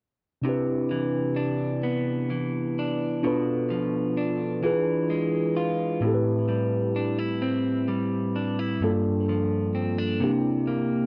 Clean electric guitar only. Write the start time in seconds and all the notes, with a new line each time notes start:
0.45 C3
0.91 E3
1.36 D4
1.83 B3
2.30 E3
2.79 D4
3.24 B2
3.70 F3
4.17 D4
4.63 E3
5.10 G#3
5.57 F4
6.02 A2
6.49 G3
6.96 D4
7.18 E4
7.42 C4
7.88 G3
8.36 D4
8.59 E4
8.82 G2
9.29 F3
9.75 C4
9.98 D4
10.20 C3
10.67 A#3